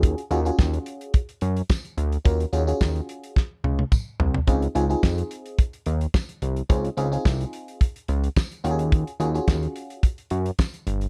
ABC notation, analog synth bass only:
X:1
M:4/4
L:1/8
Q:1/4=108
K:Ebdor
V:1 name="Analog synth bass" clef=bass
E,, E,, E,, z2 G,, z =D,, | E,, E,, E,, z2 D,, z C,, | D,, D,, F,, z2 E,, z C,, | D,, D,, C,, z2 D,, z E,,- |
E,, E,, E,, z2 G,, z =G,,, |]